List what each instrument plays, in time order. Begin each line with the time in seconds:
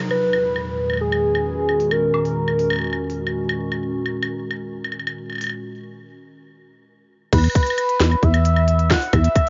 Already playing: ambient pad C3 F3 F#3 D#4 G#4
0.11 ambient pad E2, soft synth lead B4, high woodblock
0.18 ambient pad A#2 G#3
0.30 ambient pad D#3, high woodblock
0.56 high woodblock
0.71 ambient pad C#4 F#4
0.90 high woodblock
0.94 high woodblock
0.97 soft synth lead G#4, high woodblock
1.12 high woodblock
1.35 high woodblock
1.69 high woodblock
1.80 open hi-hat
1.91 soft synth lead A#4, high woodblock
2.14 high woodblock
2.25 open hi-hat
2.48 high woodblock
2.59 open hi-hat
2.70 high woodblock
2.73 high woodblock
2.79 high woodblock
2.81 high woodblock
2.84 high woodblock
2.87 high woodblock
2.90 high woodblock
2.93 high woodblock
3.10 open hi-hat
3.27 high woodblock
3.49 high woodblock
3.72 high woodblock
4.06 high woodblock
4.23 high woodblock
4.51 high woodblock
4.85 high woodblock
4.92 high woodblock
5.00 high woodblock
5.07 high woodblock
5.30 high woodblock
5.33 high woodblock
5.35 high woodblock
5.38 open hi-hat, high woodblock
5.41 high woodblock
5.44 high woodblock
5.47 high woodblock
5.49 high woodblock
7.33 acid bass E2, soft synth lead B4, kick, closed hi-hat, crash, high woodblock
7.38 high woodblock
7.44 closed hi-hat, high woodblock
7.50 high woodblock
7.55 kick, closed hi-hat, high woodblock
7.63 closed hi-hat, high woodblock
7.70 high woodblock
7.78 closed hi-hat, high woodblock
7.89 closed hi-hat
8.00 acid bass E2, snare, closed hi-hat
8.12 closed hi-hat, high woodblock
8.23 acid bass E2, soft synth lead E5, kick, closed hi-hat
8.34 closed hi-hat, high woodblock
8.45 closed hi-hat
8.57 high woodblock
8.68 closed hi-hat
8.79 closed hi-hat
8.90 soft synth lead F#5, kick, snare, high woodblock
9.02 open hi-hat
9.13 acid bass E2, soft synth lead E5, kick, closed hi-hat, high woodblock
9.24 closed hi-hat
9.36 kick, closed hi-hat, high woodblock